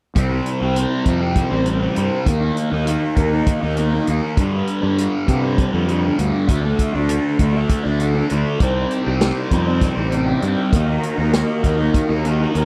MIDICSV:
0, 0, Header, 1, 5, 480
1, 0, Start_track
1, 0, Tempo, 604839
1, 123, Time_signature, 7, 3, 24, 8
1, 10039, End_track
2, 0, Start_track
2, 0, Title_t, "Tonewheel organ"
2, 0, Program_c, 0, 16
2, 6832, Note_on_c, 0, 63, 50
2, 6833, Note_on_c, 0, 72, 48
2, 6834, Note_on_c, 0, 74, 45
2, 6834, Note_on_c, 0, 79, 58
2, 8500, Note_off_c, 0, 63, 0
2, 8501, Note_off_c, 0, 72, 0
2, 8501, Note_off_c, 0, 74, 0
2, 8501, Note_off_c, 0, 79, 0
2, 8510, Note_on_c, 0, 66, 50
2, 8513, Note_on_c, 0, 70, 51
2, 8513, Note_on_c, 0, 82, 62
2, 8515, Note_on_c, 0, 75, 51
2, 10039, Note_off_c, 0, 66, 0
2, 10039, Note_off_c, 0, 70, 0
2, 10039, Note_off_c, 0, 75, 0
2, 10039, Note_off_c, 0, 82, 0
2, 10039, End_track
3, 0, Start_track
3, 0, Title_t, "Distorted electric guitar"
3, 0, Program_c, 1, 30
3, 119, Note_on_c, 1, 48, 70
3, 133, Note_on_c, 1, 55, 70
3, 143, Note_on_c, 1, 60, 75
3, 229, Note_off_c, 1, 60, 0
3, 239, Note_on_c, 1, 60, 61
3, 258, Note_off_c, 1, 55, 0
3, 267, Note_on_c, 1, 55, 52
3, 467, Note_off_c, 1, 60, 0
3, 476, Note_on_c, 1, 60, 58
3, 479, Note_off_c, 1, 48, 0
3, 494, Note_off_c, 1, 55, 0
3, 503, Note_on_c, 1, 55, 49
3, 598, Note_on_c, 1, 48, 75
3, 605, Note_off_c, 1, 55, 0
3, 613, Note_off_c, 1, 60, 0
3, 614, Note_on_c, 1, 55, 79
3, 622, Note_on_c, 1, 60, 76
3, 822, Note_off_c, 1, 48, 0
3, 831, Note_on_c, 1, 48, 58
3, 837, Note_off_c, 1, 55, 0
3, 846, Note_on_c, 1, 55, 61
3, 850, Note_off_c, 1, 60, 0
3, 860, Note_on_c, 1, 60, 61
3, 942, Note_off_c, 1, 60, 0
3, 952, Note_on_c, 1, 60, 63
3, 969, Note_off_c, 1, 55, 0
3, 979, Note_on_c, 1, 55, 45
3, 1185, Note_off_c, 1, 60, 0
3, 1193, Note_off_c, 1, 48, 0
3, 1194, Note_on_c, 1, 60, 57
3, 1213, Note_off_c, 1, 55, 0
3, 1223, Note_on_c, 1, 55, 51
3, 1309, Note_on_c, 1, 48, 54
3, 1315, Note_off_c, 1, 55, 0
3, 1324, Note_on_c, 1, 55, 61
3, 1326, Note_off_c, 1, 60, 0
3, 1336, Note_on_c, 1, 60, 64
3, 1420, Note_off_c, 1, 60, 0
3, 1429, Note_on_c, 1, 60, 59
3, 1449, Note_off_c, 1, 55, 0
3, 1458, Note_on_c, 1, 55, 46
3, 1541, Note_off_c, 1, 48, 0
3, 1550, Note_on_c, 1, 48, 63
3, 1557, Note_off_c, 1, 55, 0
3, 1566, Note_on_c, 1, 55, 70
3, 1568, Note_off_c, 1, 60, 0
3, 1577, Note_on_c, 1, 60, 75
3, 1777, Note_off_c, 1, 48, 0
3, 1785, Note_off_c, 1, 55, 0
3, 1791, Note_off_c, 1, 60, 0
3, 1793, Note_on_c, 1, 51, 67
3, 1810, Note_on_c, 1, 58, 73
3, 1820, Note_on_c, 1, 63, 74
3, 1905, Note_off_c, 1, 63, 0
3, 1915, Note_on_c, 1, 63, 54
3, 1940, Note_off_c, 1, 58, 0
3, 1943, Note_on_c, 1, 58, 54
3, 2141, Note_off_c, 1, 63, 0
3, 2150, Note_on_c, 1, 63, 58
3, 2152, Note_off_c, 1, 51, 0
3, 2176, Note_off_c, 1, 58, 0
3, 2180, Note_on_c, 1, 58, 49
3, 2268, Note_on_c, 1, 51, 70
3, 2280, Note_off_c, 1, 58, 0
3, 2283, Note_on_c, 1, 58, 77
3, 2287, Note_off_c, 1, 63, 0
3, 2296, Note_on_c, 1, 63, 74
3, 2497, Note_off_c, 1, 51, 0
3, 2507, Note_on_c, 1, 51, 54
3, 2514, Note_off_c, 1, 58, 0
3, 2524, Note_on_c, 1, 58, 57
3, 2527, Note_off_c, 1, 63, 0
3, 2536, Note_on_c, 1, 63, 63
3, 2619, Note_off_c, 1, 63, 0
3, 2628, Note_on_c, 1, 63, 60
3, 2641, Note_off_c, 1, 58, 0
3, 2651, Note_on_c, 1, 58, 43
3, 2861, Note_off_c, 1, 63, 0
3, 2868, Note_off_c, 1, 51, 0
3, 2870, Note_on_c, 1, 63, 65
3, 2886, Note_off_c, 1, 58, 0
3, 2896, Note_on_c, 1, 58, 51
3, 2985, Note_on_c, 1, 51, 63
3, 2995, Note_off_c, 1, 58, 0
3, 3003, Note_off_c, 1, 63, 0
3, 3004, Note_on_c, 1, 58, 68
3, 3013, Note_on_c, 1, 63, 67
3, 3098, Note_off_c, 1, 63, 0
3, 3107, Note_on_c, 1, 63, 63
3, 3126, Note_off_c, 1, 58, 0
3, 3136, Note_on_c, 1, 58, 46
3, 3217, Note_off_c, 1, 51, 0
3, 3226, Note_on_c, 1, 51, 62
3, 3232, Note_off_c, 1, 58, 0
3, 3242, Note_on_c, 1, 58, 74
3, 3245, Note_off_c, 1, 63, 0
3, 3255, Note_on_c, 1, 63, 74
3, 3453, Note_off_c, 1, 51, 0
3, 3461, Note_off_c, 1, 58, 0
3, 3467, Note_off_c, 1, 63, 0
3, 3474, Note_on_c, 1, 43, 74
3, 3489, Note_on_c, 1, 50, 83
3, 3499, Note_on_c, 1, 55, 80
3, 3580, Note_off_c, 1, 55, 0
3, 3589, Note_on_c, 1, 55, 65
3, 3608, Note_off_c, 1, 50, 0
3, 3618, Note_on_c, 1, 50, 47
3, 3815, Note_off_c, 1, 55, 0
3, 3824, Note_on_c, 1, 55, 59
3, 3831, Note_off_c, 1, 43, 0
3, 3846, Note_off_c, 1, 50, 0
3, 3856, Note_on_c, 1, 50, 53
3, 3946, Note_on_c, 1, 43, 74
3, 3953, Note_off_c, 1, 50, 0
3, 3963, Note_on_c, 1, 50, 71
3, 3965, Note_off_c, 1, 55, 0
3, 3974, Note_on_c, 1, 55, 88
3, 4175, Note_off_c, 1, 43, 0
3, 4184, Note_on_c, 1, 43, 61
3, 4192, Note_off_c, 1, 50, 0
3, 4202, Note_on_c, 1, 50, 67
3, 4206, Note_off_c, 1, 55, 0
3, 4216, Note_on_c, 1, 55, 69
3, 4294, Note_off_c, 1, 55, 0
3, 4303, Note_on_c, 1, 55, 55
3, 4318, Note_off_c, 1, 50, 0
3, 4327, Note_on_c, 1, 50, 54
3, 4532, Note_off_c, 1, 55, 0
3, 4542, Note_on_c, 1, 55, 64
3, 4546, Note_off_c, 1, 43, 0
3, 4558, Note_off_c, 1, 50, 0
3, 4567, Note_on_c, 1, 50, 47
3, 4659, Note_on_c, 1, 43, 56
3, 4665, Note_off_c, 1, 50, 0
3, 4674, Note_on_c, 1, 50, 64
3, 4678, Note_off_c, 1, 55, 0
3, 4688, Note_on_c, 1, 55, 64
3, 4767, Note_off_c, 1, 55, 0
3, 4776, Note_on_c, 1, 55, 53
3, 4796, Note_off_c, 1, 50, 0
3, 4806, Note_on_c, 1, 50, 51
3, 4890, Note_off_c, 1, 43, 0
3, 4900, Note_on_c, 1, 43, 69
3, 4902, Note_off_c, 1, 50, 0
3, 4912, Note_on_c, 1, 50, 76
3, 4915, Note_off_c, 1, 55, 0
3, 4924, Note_on_c, 1, 55, 77
3, 5128, Note_off_c, 1, 50, 0
3, 5129, Note_off_c, 1, 43, 0
3, 5137, Note_on_c, 1, 50, 73
3, 5142, Note_off_c, 1, 55, 0
3, 5152, Note_on_c, 1, 57, 71
3, 5163, Note_on_c, 1, 62, 73
3, 5248, Note_off_c, 1, 62, 0
3, 5252, Note_on_c, 1, 62, 63
3, 5272, Note_off_c, 1, 57, 0
3, 5281, Note_on_c, 1, 57, 52
3, 5495, Note_off_c, 1, 62, 0
3, 5498, Note_on_c, 1, 62, 65
3, 5503, Note_off_c, 1, 50, 0
3, 5514, Note_off_c, 1, 57, 0
3, 5524, Note_on_c, 1, 57, 52
3, 5616, Note_on_c, 1, 50, 62
3, 5622, Note_off_c, 1, 57, 0
3, 5631, Note_on_c, 1, 57, 76
3, 5642, Note_off_c, 1, 62, 0
3, 5645, Note_on_c, 1, 62, 73
3, 5852, Note_off_c, 1, 50, 0
3, 5861, Note_on_c, 1, 50, 55
3, 5868, Note_off_c, 1, 57, 0
3, 5878, Note_off_c, 1, 62, 0
3, 5878, Note_on_c, 1, 57, 62
3, 5887, Note_on_c, 1, 62, 61
3, 5967, Note_off_c, 1, 62, 0
3, 5976, Note_on_c, 1, 62, 61
3, 5995, Note_off_c, 1, 57, 0
3, 6004, Note_on_c, 1, 57, 48
3, 6208, Note_off_c, 1, 62, 0
3, 6218, Note_on_c, 1, 62, 62
3, 6226, Note_off_c, 1, 50, 0
3, 6235, Note_off_c, 1, 57, 0
3, 6244, Note_on_c, 1, 57, 48
3, 6343, Note_on_c, 1, 50, 54
3, 6346, Note_off_c, 1, 57, 0
3, 6356, Note_on_c, 1, 57, 66
3, 6360, Note_off_c, 1, 62, 0
3, 6369, Note_on_c, 1, 62, 59
3, 6454, Note_off_c, 1, 62, 0
3, 6464, Note_on_c, 1, 62, 57
3, 6477, Note_off_c, 1, 57, 0
3, 6487, Note_on_c, 1, 57, 50
3, 6567, Note_off_c, 1, 50, 0
3, 6576, Note_on_c, 1, 50, 68
3, 6584, Note_off_c, 1, 57, 0
3, 6594, Note_on_c, 1, 57, 70
3, 6598, Note_off_c, 1, 62, 0
3, 6608, Note_on_c, 1, 62, 74
3, 6809, Note_off_c, 1, 50, 0
3, 6818, Note_off_c, 1, 57, 0
3, 6822, Note_on_c, 1, 48, 76
3, 6825, Note_off_c, 1, 62, 0
3, 6839, Note_on_c, 1, 55, 73
3, 6851, Note_on_c, 1, 60, 74
3, 6934, Note_off_c, 1, 60, 0
3, 6943, Note_on_c, 1, 60, 61
3, 6961, Note_off_c, 1, 55, 0
3, 6970, Note_on_c, 1, 55, 49
3, 7171, Note_off_c, 1, 60, 0
3, 7181, Note_on_c, 1, 60, 69
3, 7187, Note_off_c, 1, 48, 0
3, 7198, Note_off_c, 1, 55, 0
3, 7207, Note_on_c, 1, 55, 52
3, 7302, Note_on_c, 1, 48, 72
3, 7307, Note_off_c, 1, 55, 0
3, 7316, Note_on_c, 1, 55, 81
3, 7318, Note_off_c, 1, 60, 0
3, 7328, Note_on_c, 1, 60, 86
3, 7536, Note_off_c, 1, 48, 0
3, 7545, Note_on_c, 1, 48, 59
3, 7549, Note_off_c, 1, 55, 0
3, 7558, Note_on_c, 1, 55, 65
3, 7562, Note_off_c, 1, 60, 0
3, 7571, Note_on_c, 1, 60, 67
3, 7649, Note_off_c, 1, 60, 0
3, 7658, Note_on_c, 1, 60, 62
3, 7678, Note_off_c, 1, 55, 0
3, 7687, Note_on_c, 1, 55, 46
3, 7893, Note_off_c, 1, 60, 0
3, 7903, Note_on_c, 1, 60, 63
3, 7910, Note_off_c, 1, 48, 0
3, 7921, Note_off_c, 1, 55, 0
3, 7931, Note_on_c, 1, 55, 46
3, 8025, Note_on_c, 1, 48, 63
3, 8030, Note_off_c, 1, 55, 0
3, 8039, Note_on_c, 1, 55, 62
3, 8045, Note_off_c, 1, 60, 0
3, 8055, Note_on_c, 1, 60, 61
3, 8133, Note_off_c, 1, 60, 0
3, 8142, Note_on_c, 1, 60, 63
3, 8163, Note_off_c, 1, 55, 0
3, 8172, Note_on_c, 1, 55, 51
3, 8255, Note_off_c, 1, 48, 0
3, 8265, Note_on_c, 1, 48, 72
3, 8269, Note_off_c, 1, 55, 0
3, 8279, Note_on_c, 1, 55, 74
3, 8282, Note_off_c, 1, 60, 0
3, 8292, Note_on_c, 1, 60, 73
3, 8495, Note_off_c, 1, 48, 0
3, 8499, Note_on_c, 1, 51, 68
3, 8503, Note_off_c, 1, 55, 0
3, 8510, Note_off_c, 1, 60, 0
3, 8520, Note_on_c, 1, 58, 81
3, 8528, Note_on_c, 1, 63, 82
3, 8612, Note_off_c, 1, 63, 0
3, 8621, Note_on_c, 1, 63, 64
3, 8645, Note_off_c, 1, 58, 0
3, 8649, Note_on_c, 1, 58, 50
3, 8848, Note_off_c, 1, 63, 0
3, 8858, Note_on_c, 1, 63, 63
3, 8869, Note_off_c, 1, 51, 0
3, 8888, Note_off_c, 1, 58, 0
3, 8891, Note_on_c, 1, 58, 52
3, 8979, Note_on_c, 1, 51, 73
3, 8989, Note_off_c, 1, 58, 0
3, 8992, Note_on_c, 1, 58, 75
3, 8996, Note_off_c, 1, 63, 0
3, 9006, Note_on_c, 1, 63, 80
3, 9217, Note_off_c, 1, 51, 0
3, 9227, Note_on_c, 1, 51, 62
3, 9229, Note_off_c, 1, 58, 0
3, 9239, Note_on_c, 1, 58, 62
3, 9244, Note_off_c, 1, 63, 0
3, 9253, Note_on_c, 1, 63, 71
3, 9334, Note_off_c, 1, 63, 0
3, 9344, Note_on_c, 1, 63, 57
3, 9365, Note_off_c, 1, 58, 0
3, 9374, Note_on_c, 1, 58, 46
3, 9582, Note_off_c, 1, 63, 0
3, 9592, Note_on_c, 1, 63, 62
3, 9594, Note_off_c, 1, 51, 0
3, 9609, Note_off_c, 1, 58, 0
3, 9619, Note_on_c, 1, 58, 50
3, 9715, Note_on_c, 1, 51, 63
3, 9720, Note_off_c, 1, 58, 0
3, 9730, Note_off_c, 1, 63, 0
3, 9730, Note_on_c, 1, 58, 65
3, 9739, Note_on_c, 1, 63, 72
3, 9832, Note_off_c, 1, 63, 0
3, 9842, Note_on_c, 1, 63, 62
3, 9859, Note_off_c, 1, 58, 0
3, 9868, Note_on_c, 1, 58, 51
3, 9951, Note_off_c, 1, 51, 0
3, 9960, Note_on_c, 1, 51, 66
3, 9964, Note_off_c, 1, 58, 0
3, 9974, Note_on_c, 1, 58, 75
3, 9976, Note_off_c, 1, 63, 0
3, 9986, Note_on_c, 1, 63, 84
3, 10039, Note_off_c, 1, 51, 0
3, 10039, Note_off_c, 1, 58, 0
3, 10039, Note_off_c, 1, 63, 0
3, 10039, End_track
4, 0, Start_track
4, 0, Title_t, "Fingered electric bass"
4, 0, Program_c, 2, 33
4, 127, Note_on_c, 2, 36, 85
4, 313, Note_off_c, 2, 36, 0
4, 485, Note_on_c, 2, 36, 66
4, 671, Note_off_c, 2, 36, 0
4, 840, Note_on_c, 2, 41, 64
4, 1121, Note_off_c, 2, 41, 0
4, 1202, Note_on_c, 2, 33, 76
4, 1482, Note_off_c, 2, 33, 0
4, 1566, Note_on_c, 2, 43, 81
4, 1656, Note_off_c, 2, 43, 0
4, 1796, Note_on_c, 2, 39, 77
4, 1983, Note_off_c, 2, 39, 0
4, 2157, Note_on_c, 2, 39, 64
4, 2344, Note_off_c, 2, 39, 0
4, 2514, Note_on_c, 2, 39, 72
4, 2701, Note_off_c, 2, 39, 0
4, 2880, Note_on_c, 2, 39, 74
4, 3159, Note_off_c, 2, 39, 0
4, 3237, Note_on_c, 2, 39, 72
4, 3328, Note_off_c, 2, 39, 0
4, 3471, Note_on_c, 2, 43, 88
4, 3659, Note_off_c, 2, 43, 0
4, 3833, Note_on_c, 2, 43, 70
4, 4020, Note_off_c, 2, 43, 0
4, 4194, Note_on_c, 2, 48, 69
4, 4475, Note_off_c, 2, 48, 0
4, 4552, Note_on_c, 2, 41, 79
4, 4834, Note_off_c, 2, 41, 0
4, 4910, Note_on_c, 2, 38, 81
4, 5003, Note_off_c, 2, 38, 0
4, 5150, Note_on_c, 2, 38, 77
4, 5338, Note_off_c, 2, 38, 0
4, 5509, Note_on_c, 2, 38, 63
4, 5698, Note_off_c, 2, 38, 0
4, 5866, Note_on_c, 2, 38, 77
4, 6056, Note_off_c, 2, 38, 0
4, 6233, Note_on_c, 2, 38, 68
4, 6516, Note_off_c, 2, 38, 0
4, 6596, Note_on_c, 2, 38, 69
4, 6688, Note_off_c, 2, 38, 0
4, 6827, Note_on_c, 2, 36, 83
4, 7018, Note_off_c, 2, 36, 0
4, 7196, Note_on_c, 2, 36, 65
4, 7384, Note_off_c, 2, 36, 0
4, 7548, Note_on_c, 2, 41, 71
4, 7834, Note_off_c, 2, 41, 0
4, 7912, Note_on_c, 2, 33, 74
4, 8197, Note_off_c, 2, 33, 0
4, 8273, Note_on_c, 2, 43, 80
4, 8369, Note_off_c, 2, 43, 0
4, 8513, Note_on_c, 2, 39, 75
4, 8704, Note_off_c, 2, 39, 0
4, 8872, Note_on_c, 2, 39, 75
4, 9064, Note_off_c, 2, 39, 0
4, 9237, Note_on_c, 2, 39, 81
4, 9427, Note_off_c, 2, 39, 0
4, 9596, Note_on_c, 2, 39, 69
4, 9882, Note_off_c, 2, 39, 0
4, 9961, Note_on_c, 2, 39, 74
4, 10039, Note_off_c, 2, 39, 0
4, 10039, End_track
5, 0, Start_track
5, 0, Title_t, "Drums"
5, 125, Note_on_c, 9, 42, 66
5, 126, Note_on_c, 9, 36, 86
5, 204, Note_off_c, 9, 42, 0
5, 205, Note_off_c, 9, 36, 0
5, 364, Note_on_c, 9, 42, 51
5, 444, Note_off_c, 9, 42, 0
5, 603, Note_on_c, 9, 42, 64
5, 683, Note_off_c, 9, 42, 0
5, 838, Note_on_c, 9, 42, 49
5, 840, Note_on_c, 9, 36, 65
5, 917, Note_off_c, 9, 42, 0
5, 920, Note_off_c, 9, 36, 0
5, 1076, Note_on_c, 9, 42, 63
5, 1078, Note_on_c, 9, 36, 80
5, 1155, Note_off_c, 9, 42, 0
5, 1158, Note_off_c, 9, 36, 0
5, 1315, Note_on_c, 9, 42, 57
5, 1395, Note_off_c, 9, 42, 0
5, 1556, Note_on_c, 9, 42, 56
5, 1636, Note_off_c, 9, 42, 0
5, 1796, Note_on_c, 9, 36, 88
5, 1796, Note_on_c, 9, 42, 69
5, 1876, Note_off_c, 9, 36, 0
5, 1876, Note_off_c, 9, 42, 0
5, 2038, Note_on_c, 9, 42, 54
5, 2118, Note_off_c, 9, 42, 0
5, 2277, Note_on_c, 9, 42, 64
5, 2356, Note_off_c, 9, 42, 0
5, 2512, Note_on_c, 9, 42, 47
5, 2513, Note_on_c, 9, 36, 65
5, 2591, Note_off_c, 9, 42, 0
5, 2593, Note_off_c, 9, 36, 0
5, 2750, Note_on_c, 9, 42, 64
5, 2752, Note_on_c, 9, 36, 85
5, 2830, Note_off_c, 9, 42, 0
5, 2832, Note_off_c, 9, 36, 0
5, 2989, Note_on_c, 9, 42, 49
5, 3068, Note_off_c, 9, 42, 0
5, 3231, Note_on_c, 9, 42, 48
5, 3310, Note_off_c, 9, 42, 0
5, 3470, Note_on_c, 9, 36, 94
5, 3470, Note_on_c, 9, 42, 63
5, 3550, Note_off_c, 9, 36, 0
5, 3550, Note_off_c, 9, 42, 0
5, 3709, Note_on_c, 9, 42, 45
5, 3789, Note_off_c, 9, 42, 0
5, 3955, Note_on_c, 9, 42, 63
5, 4034, Note_off_c, 9, 42, 0
5, 4191, Note_on_c, 9, 36, 67
5, 4193, Note_on_c, 9, 42, 51
5, 4270, Note_off_c, 9, 36, 0
5, 4272, Note_off_c, 9, 42, 0
5, 4430, Note_on_c, 9, 36, 88
5, 4432, Note_on_c, 9, 42, 59
5, 4509, Note_off_c, 9, 36, 0
5, 4511, Note_off_c, 9, 42, 0
5, 4671, Note_on_c, 9, 42, 58
5, 4750, Note_off_c, 9, 42, 0
5, 4911, Note_on_c, 9, 42, 53
5, 4990, Note_off_c, 9, 42, 0
5, 5147, Note_on_c, 9, 42, 70
5, 5148, Note_on_c, 9, 36, 93
5, 5226, Note_off_c, 9, 42, 0
5, 5227, Note_off_c, 9, 36, 0
5, 5387, Note_on_c, 9, 36, 62
5, 5388, Note_on_c, 9, 42, 57
5, 5466, Note_off_c, 9, 36, 0
5, 5467, Note_off_c, 9, 42, 0
5, 5626, Note_on_c, 9, 42, 74
5, 5705, Note_off_c, 9, 42, 0
5, 5865, Note_on_c, 9, 42, 50
5, 5867, Note_on_c, 9, 36, 62
5, 5945, Note_off_c, 9, 42, 0
5, 5946, Note_off_c, 9, 36, 0
5, 6105, Note_on_c, 9, 42, 66
5, 6107, Note_on_c, 9, 36, 76
5, 6185, Note_off_c, 9, 42, 0
5, 6186, Note_off_c, 9, 36, 0
5, 6346, Note_on_c, 9, 42, 53
5, 6426, Note_off_c, 9, 42, 0
5, 6585, Note_on_c, 9, 42, 53
5, 6664, Note_off_c, 9, 42, 0
5, 6826, Note_on_c, 9, 42, 67
5, 6828, Note_on_c, 9, 36, 93
5, 6906, Note_off_c, 9, 42, 0
5, 6907, Note_off_c, 9, 36, 0
5, 7069, Note_on_c, 9, 42, 51
5, 7148, Note_off_c, 9, 42, 0
5, 7308, Note_on_c, 9, 42, 64
5, 7311, Note_on_c, 9, 38, 91
5, 7388, Note_off_c, 9, 42, 0
5, 7390, Note_off_c, 9, 38, 0
5, 7548, Note_on_c, 9, 36, 62
5, 7549, Note_on_c, 9, 42, 49
5, 7628, Note_off_c, 9, 36, 0
5, 7628, Note_off_c, 9, 42, 0
5, 7787, Note_on_c, 9, 42, 63
5, 7789, Note_on_c, 9, 36, 88
5, 7789, Note_on_c, 9, 38, 27
5, 7866, Note_off_c, 9, 42, 0
5, 7868, Note_off_c, 9, 36, 0
5, 7869, Note_off_c, 9, 38, 0
5, 8030, Note_on_c, 9, 42, 50
5, 8110, Note_off_c, 9, 42, 0
5, 8271, Note_on_c, 9, 42, 49
5, 8351, Note_off_c, 9, 42, 0
5, 8513, Note_on_c, 9, 36, 97
5, 8514, Note_on_c, 9, 42, 68
5, 8592, Note_off_c, 9, 36, 0
5, 8593, Note_off_c, 9, 42, 0
5, 8756, Note_on_c, 9, 42, 56
5, 8835, Note_off_c, 9, 42, 0
5, 8994, Note_on_c, 9, 42, 66
5, 8996, Note_on_c, 9, 38, 82
5, 9073, Note_off_c, 9, 42, 0
5, 9076, Note_off_c, 9, 38, 0
5, 9236, Note_on_c, 9, 36, 62
5, 9236, Note_on_c, 9, 42, 51
5, 9315, Note_off_c, 9, 36, 0
5, 9315, Note_off_c, 9, 42, 0
5, 9478, Note_on_c, 9, 36, 81
5, 9478, Note_on_c, 9, 42, 65
5, 9557, Note_off_c, 9, 36, 0
5, 9557, Note_off_c, 9, 42, 0
5, 9720, Note_on_c, 9, 42, 56
5, 9800, Note_off_c, 9, 42, 0
5, 9960, Note_on_c, 9, 42, 57
5, 10039, Note_off_c, 9, 42, 0
5, 10039, End_track
0, 0, End_of_file